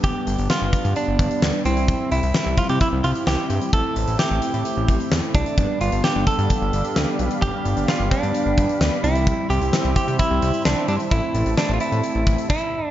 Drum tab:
CC |----------------|----------------|----------------|----------------|
HH |x-xx--xxx-xx--xx|x-xx--xxx-xx--xx|x-xx--xxx-xx--xx|x-xx--xxx-xx--xx|
SD |----o-------o---|----o-------o---|----o-------o---|----o-------o---|
BD |o-----o---o-----|o-----o-o-------|o---------o---o-|o-----o-o-------|

CC |----------------|----------------|------------x---|
HH |x-xx--xxx-xx--xx|x-xx--xxx-xx--xx|x-xx--xxx-xx----|
SD |----o-------o---|----o-------o---|----o-----------|
BD |o-----o---o-----|o-----o-o-------|o---------o-o---|